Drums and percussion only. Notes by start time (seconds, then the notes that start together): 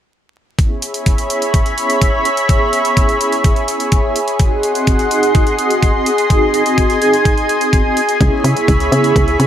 0.59 kick, closed hi-hat
0.82 closed hi-hat
0.94 closed hi-hat
1.06 kick, closed hi-hat
1.18 closed hi-hat
1.30 closed hi-hat
1.42 closed hi-hat
1.54 kick, closed hi-hat
1.66 closed hi-hat
1.78 closed hi-hat
1.90 closed hi-hat
2.02 kick, closed hi-hat
2.25 closed hi-hat
2.37 closed hi-hat
2.49 kick, closed hi-hat
2.73 closed hi-hat
2.85 closed hi-hat
2.97 kick, closed hi-hat
3.09 closed hi-hat
3.21 closed hi-hat
3.32 closed hi-hat
3.44 kick, closed hi-hat
3.56 closed hi-hat
3.68 closed hi-hat
3.80 closed hi-hat
3.92 kick, closed hi-hat
4.16 closed hi-hat
4.28 closed hi-hat
4.39 kick, closed hi-hat
4.63 closed hi-hat
4.75 closed hi-hat
4.87 kick, closed hi-hat
4.99 closed hi-hat
5.11 closed hi-hat
5.23 closed hi-hat
5.35 kick, closed hi-hat
5.47 closed hi-hat
5.59 closed hi-hat
5.71 closed hi-hat
5.83 kick, closed hi-hat
6.06 closed hi-hat
6.18 closed hi-hat
6.30 kick, closed hi-hat
6.54 closed hi-hat
6.66 closed hi-hat
6.78 kick, closed hi-hat
6.90 closed hi-hat
7.02 closed hi-hat
7.13 closed hi-hat
7.25 kick, closed hi-hat
7.38 closed hi-hat
7.49 closed hi-hat
7.61 closed hi-hat
7.73 kick, closed hi-hat
7.97 closed hi-hat
8.09 closed hi-hat
8.21 kick, closed hi-hat
8.44 closed hi-hat
8.57 closed hi-hat
8.68 kick, closed hi-hat
8.80 closed hi-hat
8.92 closed hi-hat
9.04 closed hi-hat
9.16 kick, closed hi-hat
9.28 closed hi-hat
9.40 closed hi-hat